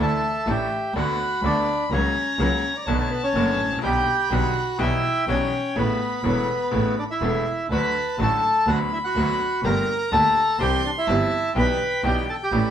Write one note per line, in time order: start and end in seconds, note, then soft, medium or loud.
0.00 0.18 D2 medium
0.00 0.19 D2 medium
0.00 0.19 D3 medium
0.00 0.19 E3 medium
0.00 0.18 A3 medium
0.00 0.19 A3 soft
0.00 0.18 D4 medium
0.00 0.19 D4 soft
0.00 0.19 E4 medium
0.00 0.19 A4 medium
0.00 0.45 A4 medium
0.00 0.91 E5 medium
0.00 0.50 A5 medium
0.46 0.67 A1 medium
0.46 0.67 A2 medium
0.46 0.67 E3 medium
0.46 0.67 A3 medium
0.46 0.67 D4 medium
0.46 0.67 E4 medium
0.46 0.67 A4 medium
0.46 0.93 G5 medium
0.51 0.94 G4 medium
0.94 1.15 D2 medium
0.94 1.16 D2 medium
0.94 1.16 D3 medium
0.94 1.15 A3 medium
0.94 1.16 A3 medium
0.94 1.15 B3 medium
0.94 1.16 B3 medium
0.94 1.15 D4 medium
0.94 1.41 F#4 medium
0.94 1.16 F#4 medium
0.94 1.41 F#5 medium
0.94 1.93 B5 medium
1.42 1.63 D2 medium
1.42 1.64 D2 medium
1.42 1.64 D3 medium
1.42 1.63 A3 medium
1.42 1.64 A3 medium
1.42 1.64 B3 medium
1.42 1.64 D4 medium
1.42 1.64 F#4 medium
1.42 1.89 D5 medium
1.46 1.90 D4 medium
1.90 2.11 C#2 medium
1.90 2.12 C#2 medium
1.90 2.12 C#3 medium
1.90 2.11 F#3 medium
1.90 2.12 F#3 medium
1.90 2.11 A#3 medium
1.90 2.12 A#3 medium
1.90 2.11 C#4 medium
1.90 2.37 C#4 medium
1.90 2.13 F#4 medium
1.90 2.38 C#5 medium
1.90 2.88 A#5 medium
2.38 2.59 C#2 medium
2.38 2.60 C#2 medium
2.38 2.60 C#3 medium
2.38 2.59 F#3 medium
2.38 2.60 F#3 medium
2.38 2.59 A#3 medium
2.38 2.60 A#3 medium
2.38 2.59 C#4 medium
2.38 2.73 C#4 medium
2.38 2.60 F#4 medium
2.38 2.77 C#5 medium
2.77 2.85 D5 medium
2.85 3.08 B1 medium
2.85 3.08 B2 medium
2.85 3.08 D3 medium
2.85 3.07 A3 medium
2.85 3.08 A3 medium
2.85 3.07 B3 medium
2.85 3.08 B3 medium
2.85 3.07 D4 medium
2.85 3.08 F#4 medium
2.85 2.94 C#5 medium
2.85 3.83 A5 medium
2.93 3.02 B4 medium
3.00 3.10 C#5 medium
3.11 3.22 B3 medium
3.11 3.22 B4 medium
3.24 3.79 C#4 medium
3.24 3.79 C#5 medium
3.34 3.55 F#1 medium
3.34 3.56 F#1 medium
3.34 3.56 F#2 medium
3.34 3.56 D3 medium
3.34 3.55 A3 medium
3.34 3.56 A3 medium
3.34 3.55 B3 medium
3.34 3.56 B3 medium
3.34 3.55 D4 medium
3.34 3.56 F#4 medium
3.57 3.82 A1 soft
3.65 3.71 G#1 soft
3.72 3.78 A1 medium
3.78 3.84 A#1 medium
3.78 4.80 B5 medium
3.82 4.03 B1 medium
3.82 4.03 B2 medium
3.82 4.03 D3 medium
3.82 4.03 G3 medium
3.82 4.03 B3 medium
3.82 4.03 D4 medium
3.82 4.03 G4 medium
3.82 4.29 G4 medium
3.82 4.33 G5 medium
4.29 4.51 B1 medium
4.29 4.52 B1 medium
4.29 4.52 B2 medium
4.29 4.52 D3 medium
4.29 4.50 G3 medium
4.29 4.52 G3 medium
4.29 4.51 B3 medium
4.29 4.52 B3 medium
4.29 4.51 D4 medium
4.29 4.52 G4 medium
4.29 4.82 F#5 medium
4.34 4.77 F#4 medium
4.78 4.99 B1 medium
4.78 5.00 B1 medium
4.78 4.99 B2 medium
4.78 4.99 E3 medium
4.78 4.99 G3 medium
4.78 5.00 B3 medium
4.78 4.99 E4 medium
4.78 5.25 E4 medium
4.78 4.99 F#4 medium
4.78 5.00 F#4 medium
4.78 5.25 E5 medium
4.78 5.78 G5 medium
5.27 5.48 B1 medium
5.27 5.48 B2 medium
5.27 5.48 E3 medium
5.27 5.47 G3 medium
5.27 5.48 G3 medium
5.27 5.48 B3 medium
5.27 5.48 E4 medium
5.27 5.48 F#4 medium
5.27 5.78 C#5 medium
5.31 5.74 C#4 medium
5.75 5.96 A1 medium
5.75 5.96 A2 medium
5.75 5.96 C#3 medium
5.75 5.96 A3 medium
5.75 5.96 B3 medium
5.75 6.22 B3 medium
5.75 5.96 C#4 medium
5.75 5.96 E4 medium
5.75 5.96 A4 medium
5.75 6.21 B4 medium
5.75 7.46 B5 medium
6.24 6.44 E1 medium
6.24 6.44 E2 medium
6.24 6.44 C#3 medium
6.24 6.44 A3 medium
6.24 6.44 B3 medium
6.24 6.95 B3 medium
6.24 6.44 C#4 medium
6.24 6.44 E4 medium
6.24 6.44 A4 medium
6.28 6.95 B4 medium
6.71 6.92 A1 medium
6.71 6.94 A1 medium
6.71 6.92 A2 medium
6.71 6.92 C#3 medium
6.71 6.93 A3 medium
6.71 6.93 B3 medium
6.71 6.93 C#4 medium
6.71 6.93 E4 medium
6.71 6.93 A4 medium
6.99 7.04 D4 medium
6.99 7.04 D5 medium
7.10 7.68 E4 medium
7.10 7.67 E5 medium
7.21 7.42 E1 medium
7.21 7.42 E2 medium
7.21 7.42 C#3 medium
7.21 7.42 A3 medium
7.21 7.42 B3 medium
7.21 7.42 C#4 medium
7.21 7.42 E4 medium
7.21 7.42 A4 medium
7.70 7.90 D2 medium
7.70 7.91 D2 medium
7.70 7.92 D3 medium
7.70 7.92 F#3 medium
7.70 7.91 A3 medium
7.70 7.92 A3 medium
7.70 7.91 D4 medium
7.70 7.91 F#4 medium
7.70 7.92 F#4 medium
7.70 8.16 B4 medium
7.70 8.64 A5 medium
7.70 8.16 B5 medium
8.18 8.39 A1 medium
8.18 8.39 A2 medium
8.18 8.39 D3 medium
8.18 8.39 F#3 medium
8.18 8.39 A3 medium
8.18 8.39 A3 soft
8.18 8.39 D4 medium
8.18 8.39 F#4 medium
8.18 8.40 F#4 medium
8.22 8.66 A4 medium
8.22 8.70 A5 medium
8.67 8.87 D2 medium
8.67 8.88 D2 medium
8.67 8.88 D3 medium
8.67 8.88 F#3 medium
8.67 8.88 B3 medium
8.67 8.88 D4 medium
8.67 8.88 F#4 medium
8.67 8.80 F#4 medium
8.67 8.79 F#5 medium
8.67 9.66 B5 medium
8.93 8.98 E4 medium
8.93 8.98 E5 medium
9.04 9.61 F#4 medium
9.04 9.60 F#5 medium
9.15 9.36 D2 medium
9.15 9.37 D2 medium
9.15 9.37 D3 medium
9.15 9.37 F#3 medium
9.15 9.36 B3 medium
9.15 9.37 B3 medium
9.15 9.36 D4 medium
9.15 9.36 F#4 medium
9.15 9.37 F#4 medium
9.63 9.84 G1 medium
9.63 9.85 G1 medium
9.63 9.85 G2 medium
9.63 9.85 D3 medium
9.63 9.84 A3 medium
9.63 9.85 A3 medium
9.63 9.84 A#3 medium
9.63 9.84 G4 medium
9.63 9.85 G4 medium
9.63 10.10 A#4 medium
9.63 10.61 A#5 medium
9.63 10.14 A#5 medium
10.11 10.32 D2 medium
10.11 10.32 D3 medium
10.11 10.32 A3 medium
10.11 10.32 A#3 medium
10.11 10.32 G4 medium
10.11 10.33 G4 medium
10.11 10.57 A4 medium
10.11 10.61 A5 medium
10.59 10.80 C2 medium
10.59 10.81 C3 medium
10.59 10.80 E3 medium
10.59 10.80 G3 medium
10.59 10.80 C4 medium
10.59 10.80 E4 medium
10.59 10.80 G4 medium
10.59 10.83 G4 medium
10.59 10.85 G5 medium
10.59 11.09 C6 medium
10.85 10.91 D4 medium
10.85 10.90 D5 medium
10.98 11.53 E4 medium
10.98 11.53 E5 medium
11.07 11.28 G1 medium
11.07 11.28 G2 medium
11.07 11.28 E3 medium
11.07 11.28 G3 medium
11.07 11.28 C4 medium
11.07 11.28 E4 medium
11.07 11.28 G4 medium
11.07 11.55 A5 medium
11.55 11.76 B1 medium
11.55 11.76 B2 medium
11.55 11.76 E3 medium
11.55 11.76 B3 medium
11.55 11.76 D4 medium
11.55 11.76 E4 medium
11.55 11.76 G4 medium
11.55 12.54 G5 medium
11.55 12.02 B5 medium
11.60 12.03 B4 medium
12.03 12.24 B1 medium
12.03 12.24 B2 medium
12.03 12.24 E3 medium
12.03 12.24 B3 medium
12.03 12.24 D4 medium
12.03 12.24 E4 medium
12.03 12.24 G4 medium
12.03 12.17 G4 medium
12.03 12.16 G5 medium
12.29 12.35 A4 medium
12.29 12.35 A5 medium
12.43 12.70 G4 medium
12.43 12.70 G5 medium
12.51 12.70 A1 medium
12.51 12.70 A2 medium
12.51 12.70 E3 medium
12.51 12.70 A3 medium
12.51 12.70 D4 medium
12.51 12.70 G4 medium
12.51 12.70 B5 medium